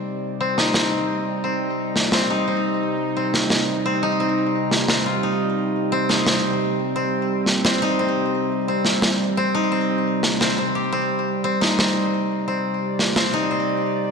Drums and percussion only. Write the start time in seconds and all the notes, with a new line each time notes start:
0.58 snare
0.74 snare
1.96 snare
2.12 snare
3.34 snare
3.50 snare
4.71 snare
4.88 snare
6.10 snare
6.26 snare
7.46 snare
7.65 snare
8.85 snare
9.02 snare
10.23 snare
10.41 snare
11.62 snare
11.79 snare
12.99 snare
13.16 snare